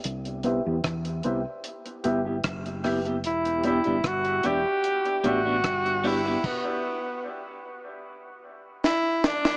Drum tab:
CC |----------------|----------------|x---------------|
HH |xxx-xxx-xxx-xxox|xxxxxxx-xxx-xxo-|----------------|
SD |----r-------r-r-|----r-------r---|------------o-oo|
BD |----o-------o---|----o-------o---|o---------------|